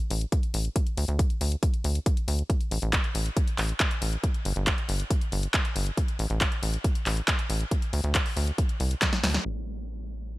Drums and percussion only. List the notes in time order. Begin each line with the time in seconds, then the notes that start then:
0.11 open hi-hat
0.21 closed hi-hat
0.32 kick, closed hi-hat
0.43 closed hi-hat
0.54 open hi-hat
0.65 closed hi-hat
0.76 kick, closed hi-hat
0.87 closed hi-hat
0.97 open hi-hat
1.08 closed hi-hat
1.19 kick, closed hi-hat
1.30 closed hi-hat
1.41 open hi-hat
1.52 closed hi-hat
1.63 kick, closed hi-hat
1.74 closed hi-hat
1.84 open hi-hat
1.95 closed hi-hat
2.06 kick, closed hi-hat
2.17 closed hi-hat
2.28 open hi-hat
2.39 closed hi-hat
2.50 kick, closed hi-hat
2.61 closed hi-hat
2.71 open hi-hat
2.82 closed hi-hat
2.93 kick, clap, closed hi-hat
3.04 closed hi-hat
3.15 open hi-hat
3.26 closed hi-hat
3.37 kick, closed hi-hat
3.47 closed hi-hat
3.58 clap, open hi-hat
3.69 closed hi-hat
3.80 kick, clap, closed hi-hat
3.91 closed hi-hat
4.02 open hi-hat
4.13 closed hi-hat
4.24 kick, closed hi-hat
4.34 closed hi-hat
4.45 open hi-hat
4.56 closed hi-hat
4.67 kick, clap, closed hi-hat
4.78 closed hi-hat
4.89 open hi-hat
5.00 closed hi-hat
5.10 kick, closed hi-hat
5.21 closed hi-hat
5.32 open hi-hat
5.43 closed hi-hat
5.54 kick, clap, closed hi-hat
5.65 closed hi-hat
5.76 open hi-hat
5.87 closed hi-hat
5.97 kick, closed hi-hat
6.08 closed hi-hat
6.19 open hi-hat
6.30 closed hi-hat
6.41 kick, clap, closed hi-hat
6.52 closed hi-hat
6.63 open hi-hat
6.74 closed hi-hat
6.84 kick, closed hi-hat
6.95 closed hi-hat
7.06 clap, open hi-hat
7.17 closed hi-hat
7.28 kick, clap, closed hi-hat
7.39 closed hi-hat
7.50 open hi-hat
7.61 closed hi-hat
7.71 kick, closed hi-hat
7.82 closed hi-hat
7.93 open hi-hat
8.04 closed hi-hat
8.15 kick, clap, closed hi-hat
8.26 open hi-hat
8.37 open hi-hat
8.47 closed hi-hat
8.58 kick, closed hi-hat
8.69 closed hi-hat
8.80 open hi-hat
8.91 closed hi-hat
9.02 kick, snare, clap, closed hi-hat
9.13 snare, closed hi-hat
9.24 snare, open hi-hat
9.34 snare, closed hi-hat
9.89 closed hi-hat
10.00 closed hi-hat
10.11 closed hi-hat
10.21 closed hi-hat
10.32 closed hi-hat